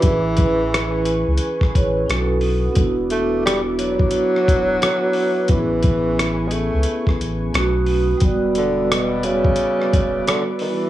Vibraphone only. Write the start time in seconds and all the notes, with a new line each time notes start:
0.00 C#4 E4
0.07 G#4 B4
1.63 E4 B4
1.75 G#4 C#5
1.97 E4 B4
2.06 C#4 D#4 F#4
2.12 A4
2.72 B3 D4
2.80 E4 F#4
5.47 B3 C#4
5.54 E4 G#4
7.53 A3 C#4 D#4
7.58 F#4
8.17 G3 B3
8.24 F#4 D5